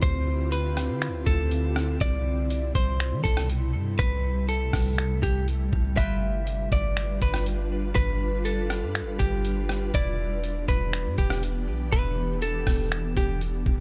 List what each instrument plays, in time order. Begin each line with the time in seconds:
Already playing: ambient pad D3 C4 E4 F4 G4
0.03 808-style bass D2, clean electric guitar C5, kick, closed hi-hat
0.52 clean electric guitar B4, closed hi-hat
0.77 cross-stick, closed hi-hat
0.89 808-style bass D3
1.02 finger snap, closed hi-hat
1.08 808-style bass D2
1.26 808-style bass D2, clean electric guitar A4, kick, closed hi-hat
1.51 closed hi-hat
1.76 cross-stick
2.01 808-style bass C2, ambient pad B2 C3 G3, clean electric guitar D5, kick, closed hi-hat
2.50 closed hi-hat
2.75 808-style bass C2, clean electric guitar C5, kick, closed hi-hat
3.00 finger snap, closed hi-hat
3.12 808-style bass E3
3.24 808-style bass C2, clean electric guitar A4, kick, closed hi-hat
3.37 cross-stick
3.50 closed hi-hat
3.74 808-style bass G2
3.99 808-style bass C2, ambient pad A3, clean electric guitar B4, kick, closed hi-hat
4.49 clean electric guitar A4, closed hi-hat
4.73 808-style bass C2, kick, cross-stick, open hi-hat
4.98 finger snap, closed hi-hat
5.23 808-style bass C2, clean electric guitar G4, kick, closed hi-hat
5.48 closed hi-hat
5.73 808-style bass C2, kick
5.95 808-style bass G1, ambient pad D4 F4 B4, koto F4 B4, clean electric guitar E5, kick, closed hi-hat
6.00 koto G5
6.47 closed hi-hat
6.72 808-style bass G1, clean electric guitar D5, kick, closed hi-hat
6.97 finger snap, closed hi-hat
7.22 808-style bass G1, clean electric guitar B4, kick, closed hi-hat
7.34 cross-stick
7.46 closed hi-hat
7.95 808-style bass G1, clean electric guitar B4, kick, closed hi-hat
8.45 clean electric guitar A4, closed hi-hat
8.70 cross-stick, closed hi-hat
8.83 808-style bass G2
8.95 finger snap, closed hi-hat
9.01 808-style bass G1
9.19 808-style bass G1, clean electric guitar G4, kick, closed hi-hat
9.45 closed hi-hat
9.69 cross-stick
9.94 808-style bass E1, ambient pad E3 B3 D4 G4, koto E4 D5, clean electric guitar D5, kick, closed hi-hat
10.44 closed hi-hat
10.68 808-style bass E1, clean electric guitar B4, kick, closed hi-hat
10.93 finger snap, closed hi-hat
11.06 808-style bass G2
11.18 808-style bass E1, clean electric guitar G4, kick, closed hi-hat
11.30 cross-stick
11.43 closed hi-hat
11.68 808-style bass B1
11.92 808-style bass E1, clean electric guitar B4, koto E5, kick, closed hi-hat
12.42 clean electric guitar A4, closed hi-hat
12.67 808-style bass E1, kick, cross-stick, open hi-hat
12.92 finger snap, closed hi-hat
13.16 808-style bass E1, clean electric guitar G4, kick, closed hi-hat
13.41 closed hi-hat
13.66 808-style bass E1, kick